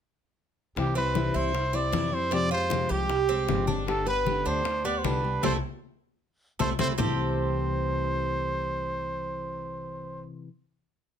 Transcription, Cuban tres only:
0.95 C4
1.34 E4
1.73 C4
1.92 E4
2.31 C4
2.51 F4
2.89 G4
3.29 C4
3.67 D4
4.07 B4
4.46 D4
4.85 B3
5.04 D4
5.43 A3 C4 E4
6.59 A3 C4 E4
6.79 A3 C4 E4
6.98 C4 G4 A4

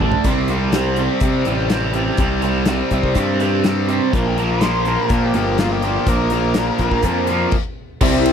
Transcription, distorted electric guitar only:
0.02 D3 A3 D4
0.26 C3 G3 C4
0.49 C3 G3 C4
0.73 C3 G3 C4
0.97 C3 G3 C4
1.22 C3 G3 C4
1.46 C3 G3 C4
1.69 C3 G3 C4
1.94 C3 G3 C4
2.18 C3 G3 C4
2.42 C3 G3 C4
2.67 C3 G3 C4
2.92 C3 G3 C4
3.16 C3 G3 C4
3.41 C3 G3 C4
3.65 C3 G3 C4
3.88 C3 G3 C4
4.14 A#2 F3 A#3
4.38 A#2 F3 A#3
4.62 A#2 F3 A#3
4.86 A#2 F3 A#3
5.11 A#2 F3 A#3
5.35 A#2 F3 A#3
5.59 A#2 F3 A#3
5.83 A#2 F3 A#3
6.08 A#2 F3 A#3
6.32 A#2 F3 A#3
6.56 A#2 F3 A#3
6.80 A#2 F3 A#3
7.05 A#2 F3 A#3
7.29 A#2 F3 A#3
8.02 C3 G3 C4

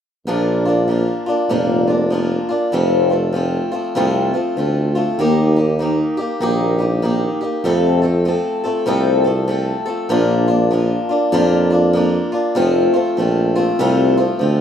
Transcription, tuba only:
0.27 A#1
1.49 F1
2.73 F1
3.96 C2
4.57 D2
5.18 D#2
6.41 A#1
7.64 F2
8.88 C2
10.10 A#1
11.33 F2
12.57 F1
13.18 A#1
13.79 C2
14.41 D2

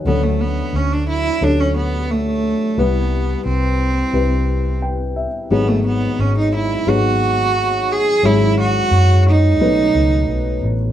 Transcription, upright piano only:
0.06 D2 D3 F#3 C#4 D4 A4
1.42 F#3 C#4 D4 A4
2.78 C2 C3 G3 E4 B4
4.13 G3 C4 E4 B4
4.82 G5
5.16 E5
5.50 G#1 G#2 F#3 B3 D#4 G#4
6.87 F#3 B3 D#4 G#4
8.23 G#1 G#2 F#3 C#4 E4 G#4
9.61 B1 B2 A3 C#4 D#4 B4

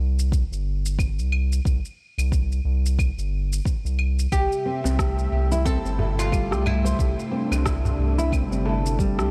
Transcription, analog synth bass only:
0.00 C2
0.52 G1
1.18 C2
1.65 C2
2.18 C2
2.65 C2
3.18 G1
3.85 C2
4.32 C2
4.85 C2
5.32 C2
5.85 G1
6.51 C2
6.99 C2
7.51 C2
7.98 C2
8.51 G1
9.18 C2

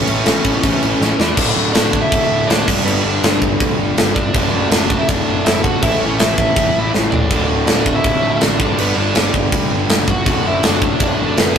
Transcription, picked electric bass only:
0.08 A1
0.26 A1
0.45 A1
0.64 A1
0.83 A1
1.00 A1
1.19 E2
1.38 D1
1.55 D1
1.75 D1
2.12 D1
2.30 D1
2.49 D1
2.68 G1
2.85 G1
3.04 G1
3.23 G1
3.42 G1
3.61 D2
3.79 G1
3.98 G1
4.16 G1
4.35 F#1
4.53 F#1
4.71 F#1
5.09 F#1
5.28 F#1
5.46 F#1
5.83 A1
6.02 A1
6.21 A1
6.38 A1
6.57 E2
6.76 A1
6.95 A1
7.13 A1
7.31 D1
7.50 D1
7.68 D1
8.04 D1
8.23 D1
8.42 A1
8.60 G1
8.78 G1
8.97 G1
9.15 G1
9.34 G1
9.52 D2
9.71 G1
9.89 G1
10.07 G1
10.26 F#1
10.45 F#1
10.64 F#1
11.00 F#1
11.20 F#1
11.38 F#1

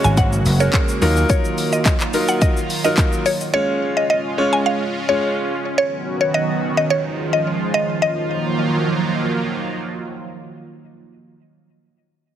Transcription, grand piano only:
Already playing: G#3 C#4 F#4 C#5
0.60 G#3 C#4 F#4 A#4
1.01 F#3 D#4 F4 A#4
2.14 F#3 D#4 F4 A#4
2.85 F#3 D#4 F4 A#4
3.54 G#3 C#4 F4 C#5
4.38 G#3 C#4 F4 C#5
5.09 G#3 C#4 F4 C#5

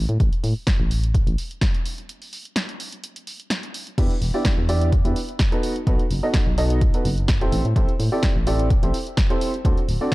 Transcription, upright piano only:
3.98 B3 D4 E4 G4 B4
4.34 B3 D4 E4 G4 D5
4.69 B3 D4 E4 G4 D5
5.05 B3 D4 E4 G4 B4
5.52 B3 D#4 F#4 A4 B4
5.87 B3 D#4 F#4 A4 B4
6.23 B3 D#4 F#4 A4 D#5
6.58 B3 D#4 F#4 A4 D#5
6.94 B3 D#4 F#4 A4 B4
7.41 C4 E4 G4 A4 C5
7.76 C4 E4 G4 A4 C5
8.12 C4 E4 G4 A4 D5
8.47 C4 E4 G4 A4 D5
8.83 C4 E4 G4 A4 C5
9.30 C4 E4 G4 A4 C5
9.65 C4 D4 F#4 A4 C5
10.01 C4 D4 F#4 A4 D5

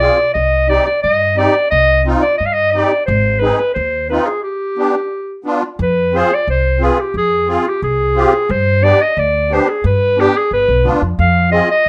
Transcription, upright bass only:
0.35 C2
1.04 G2
1.72 C2
2.40 G2
3.08 G#1
3.76 D#2
5.79 F2
6.47 C2
7.14 F2
7.82 C2
8.49 G2
9.17 D2
9.84 G2
10.51 G1
10.69 B1
10.85 D2
11.02 F2
11.19 F2

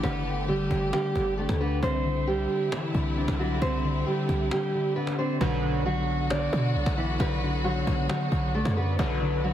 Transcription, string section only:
Already playing: D3 A3 B3 G4
1.83 D3 G3 C4 E4
5.41 D3 F#3 B3 F#4
8.99 E4

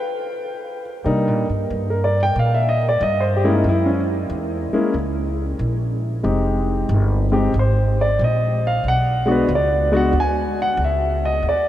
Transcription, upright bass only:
1.06 C3
1.27 A#2
1.49 G2
1.70 G2
2.36 A#2
3.01 G2
3.64 F#2
4.30 E2
4.72 muted upright bass stroke
4.94 C#2
5.59 A#1
6.24 F1
6.89 G1
7.54 G#1
8.19 A#1
8.84 B1
9.48 C#2
10.13 D2
10.77 C#2
11.43 D#2

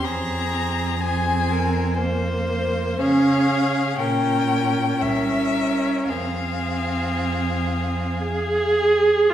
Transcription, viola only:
0.05 C4
1.01 C4
1.98 A#3
3.01 C#4
3.98 C#4
5.00 C#4
6.09 C4
8.23 G#4
9.30 F4

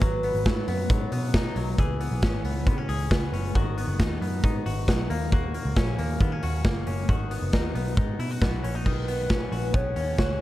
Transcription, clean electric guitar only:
0.02 F#3
0.24 B3
0.46 F#3
0.68 B3
0.90 F#3
1.12 B3
1.35 D#4
1.57 F#3
1.79 E3 G#4
2.01 B3
2.23 C#4
2.45 B3
2.67 B3
2.78 C#4
2.89 G#4
3.11 B3
3.33 C#4
3.55 D#3 F#4
3.78 B3
3.99 D#4
4.22 B3
4.44 D#4
4.66 F#4
4.88 B3
5.10 A#3
5.32 A#3 F#4
5.55 A#3
5.77 C#4
5.99 A#3
6.21 B3
6.32 C#4
6.43 F#4
6.65 A#3
6.87 C#4
7.09 D#3 F#4
7.31 B3
7.53 D#4
7.75 B3
7.98 D#4
8.20 E4
8.31 F#4
8.42 B3
8.64 C#4
8.75 D#4
8.86 D#3
9.08 B3
9.30 C#4
9.52 F#4
9.74 B3
9.96 C#4
10.19 F#4

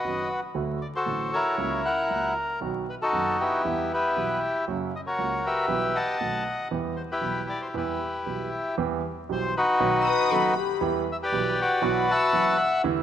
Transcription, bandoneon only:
Already playing: F#4 B4 D#5
0.82 D5
0.95 F#4 A4 C5
1.33 E4 A#4 C#5
1.85 A#4 F#5
2.90 B4
3.02 D#4 F#4 A4
3.40 B3 E4 G4
3.94 E4 G4 B4
4.96 D#5
5.07 F#4 A#4 C#5
5.46 G4 B4 E5
5.95 D#5 F#5 A5
6.96 C5
7.11 E4 G4 B4
7.49 D5
7.62 C5
7.77 E4 G4 B4
9.32 C5
9.57 D#4 F#4 B4
11.12 E5
11.23 G4 B4 D5
11.61 F#4 B4 D5
12.11 E5 F#5 A5

